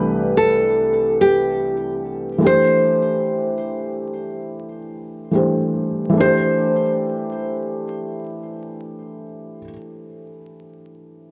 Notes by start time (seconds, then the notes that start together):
Already playing: C2 E3 A3 D4 G4 B4
0.37 A4
1.21 G4
2.38 E3 A3 D4
2.44 G4 C5
5.31 E3 A3 D4 G4
5.35 C5
6.10 E3 A3
6.17 D4 G4 C5
6.25 C5